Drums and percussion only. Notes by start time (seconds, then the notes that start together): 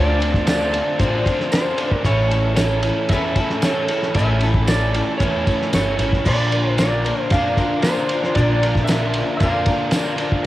0.22 ride
0.34 kick, snare
0.47 snare, ride, tambourine
0.74 ride
0.99 kick, ride
1.26 kick, ride
1.40 snare
1.52 snare, ride, tambourine
1.78 ride
1.92 kick
2.05 kick, ride
2.32 ride
2.57 snare, ride, tambourine
2.83 ride
3.09 kick, ride
3.36 kick, ride
3.50 snare
3.62 snare, ride, tambourine
3.88 ride
4.03 snare
4.15 kick, ride
4.41 ride
4.54 kick
4.68 snare, ride, tambourine
4.94 ride
5.20 kick, ride
5.47 kick, ride
5.62 snare
5.73 snare, ride, tambourine
5.99 ride
6.13 kick, snare
6.26 kick, crash
6.52 ride
6.78 snare, ride, tambourine
7.06 ride
7.30 kick, ride
7.57 kick, ride
7.82 snare, ride, tambourine
8.09 ride
8.24 snare
8.35 kick, ride
8.63 ride
8.75 kick, snare
8.87 snare, ride, tambourine
9.14 ride
9.40 kick, ride
9.66 kick, ride
9.91 snare, ride, tambourine
10.18 ride
10.32 kick